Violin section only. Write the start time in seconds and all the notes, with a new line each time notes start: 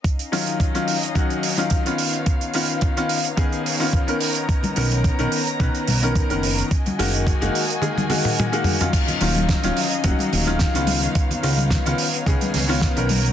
0.05 C#4 D#4 D#5 F5
1.99 B3 D#4 C#5
4.21 A#5
6.72 A#3 F#4 D#5 G#5
8.94 C#4 D#4 D#5 F5
10.88 B3 D#4 C#5
13.10 D#4 A#5